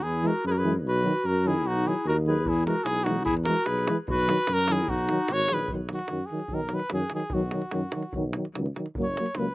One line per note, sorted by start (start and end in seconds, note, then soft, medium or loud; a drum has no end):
0.03 0.26 E2 medium
0.03 0.30 E4 medium
0.03 0.29 G#4 medium
0.23 0.31 E3 medium
0.23 0.32 G#3 medium
0.27 0.46 F#4 medium
0.27 0.46 A#4 medium
0.44 0.86 F#2 medium
0.44 0.56 G#4 medium
0.44 0.53 B4 loud
0.52 0.61 F#4 medium
0.52 0.60 A#4 medium
0.58 0.75 G#4 medium
0.58 0.75 B4 medium
0.63 0.72 E3 medium
0.63 0.73 G#3 medium
0.85 1.07 B1 medium
0.85 1.27 F#4 medium
0.85 1.27 B4 loud
1.03 1.12 D#3 medium
1.03 1.11 F#3 medium
1.25 1.66 F#2 medium
1.25 1.49 F#4 medium
1.25 1.49 A#4 loud
1.44 1.54 D#3 medium
1.44 1.53 F#3 medium
1.44 1.70 E4 medium
1.44 1.68 G#4 medium
1.65 1.87 B1 medium
1.65 1.89 D#4 loud
1.65 1.89 F#4 loud
1.84 1.93 D#3 medium
1.84 1.95 F#3 medium
1.84 2.06 E4 medium
1.84 2.07 G#4 medium
2.05 2.45 D#2 loud
2.05 2.16 F#4 medium
2.05 2.17 A#4 medium
2.26 2.34 D#3 medium
2.26 2.36 F#3 medium
2.26 2.48 G#4 medium
2.26 2.51 B4 medium
2.44 2.67 E2 medium
2.44 2.66 E4 medium
2.44 davul low medium
2.49 2.66 G#4 medium
2.57 davul high soft
2.67 2.75 E3 medium
2.67 2.75 G#3 medium
2.67 2.88 F#4 medium
2.67 2.86 A#4 medium
2.67 davul high medium
2.84 3.29 B1 medium
2.84 3.08 E4 medium
2.84 3.06 G#4 loud
2.84 davul high medium
2.96 davul high soft
3.04 3.16 E3 medium
3.04 3.15 G#3 medium
3.04 3.25 D#4 medium
3.04 3.25 F#4 medium
3.04 davul high medium
3.25 3.49 E2 loud
3.25 3.35 E4 loud
3.25 3.35 G#4 medium
3.25 davul low medium
3.37 davul high soft
3.45 3.55 E3 medium
3.45 3.55 G#3 medium
3.45 3.69 F#4 medium
3.45 3.67 A#4 loud
3.45 davul high medium
3.57 davul high soft
3.66 3.90 B1 medium
3.66 3.98 G#4 medium
3.66 3.97 B4 medium
3.66 davul high medium
3.78 davul high soft
3.87 3.97 E3 medium
3.87 3.96 G#3 medium
3.87 davul high medium
4.08 4.30 B1 medium
4.08 4.49 F#4 loud
4.08 4.55 B4 loud
4.08 davul low loud
4.19 davul high soft
4.28 4.36 D#3 medium
4.28 4.36 F#3 medium
4.28 davul high medium
4.37 davul high soft
4.47 4.91 F#2 medium
4.47 4.71 F#4 medium
4.47 davul high medium
4.54 4.74 A#4 loud
4.59 davul high soft
4.68 4.77 D#3 medium
4.68 4.78 F#3 medium
4.68 4.91 E4 medium
4.68 davul high medium
4.72 4.91 G#4 loud
4.88 5.12 B1 medium
4.88 5.33 D#4 loud
4.88 5.34 F#4 loud
4.88 davul low medium
4.98 davul high soft
5.09 5.18 D#3 medium
5.09 5.19 F#3 medium
5.09 davul high medium
5.28 5.48 G#1 medium
5.28 5.52 F#4 medium
5.28 davul high medium
5.33 5.55 C#5 loud
5.48 5.68 A#1 medium
5.48 5.60 D#3 medium
5.48 5.58 F#3 medium
5.48 5.71 G#4 medium
5.48 davul high medium
5.53 5.72 B4 loud
5.59 davul high soft
5.68 5.93 B1 medium
5.68 5.79 D#3 medium
5.68 5.79 F#3 medium
5.68 davul low medium
5.89 5.99 D#3 soft
5.89 6.00 F#3 medium
5.89 davul high medium
5.94 6.28 F#4 medium
5.99 davul high soft
6.08 6.22 F#2 medium
6.08 6.18 D#3 medium
6.08 6.19 F#3 medium
6.08 davul high medium
6.26 6.56 G#4 medium
6.31 6.39 D#3 medium
6.31 6.41 F#3 medium
6.39 davul high soft
6.48 6.59 F#3 medium
6.48 davul low medium
6.52 6.75 B1 medium
6.52 6.60 D#3 medium
6.52 6.76 A#4 medium
6.69 6.80 D#3 medium
6.69 6.80 F#3 medium
6.69 davul high medium
6.74 6.93 B4 medium
6.79 davul high soft
6.90 7.04 F#2 medium
6.90 7.01 D#3 medium
6.90 7.01 F#3 medium
6.90 davul high medium
6.94 7.12 G#4 medium
7.10 7.21 D#3 medium
7.10 7.21 F#3 medium
7.10 davul high medium
7.15 7.35 G#4 medium
7.20 davul high soft
7.30 7.55 B1 medium
7.30 7.42 F#3 medium
7.30 8.35 F#4 medium
7.30 davul low loud
7.34 7.42 D#3 medium
7.51 7.61 D#3 medium
7.51 7.61 F#3 medium
7.51 davul high medium
7.62 davul high soft
7.71 7.85 F#2 medium
7.71 7.82 D#3 medium
7.71 7.81 F#3 medium
7.71 davul high medium
7.92 8.03 D#3 medium
7.92 8.03 F#3 soft
7.92 davul high medium
8.03 davul high soft
8.13 8.37 B1 medium
8.13 8.24 D#3 medium
8.13 8.23 F#3 medium
8.13 davul low medium
8.33 8.45 D#3 medium
8.33 8.44 F#3 medium
8.33 davul high medium
8.45 davul high soft
8.54 8.68 C#2 medium
8.54 8.66 D#3 medium
8.54 8.63 F#3 medium
8.54 davul high medium
8.66 davul high soft
8.76 8.86 D#3 medium
8.76 8.84 F#3 soft
8.76 davul high medium
8.86 davul high soft
8.95 9.19 F#1 medium
8.95 9.06 F#3 medium
8.95 9.05 A#3 medium
8.95 davul low loud
9.03 9.40 C#5 medium
9.17 9.26 F#3 medium
9.17 9.26 A#3 medium
9.17 davul high medium
9.26 davul high soft
9.35 9.48 C#2 medium
9.35 9.46 F#3 medium
9.35 9.45 A#3 medium
9.35 9.55 B4 medium
9.35 davul high medium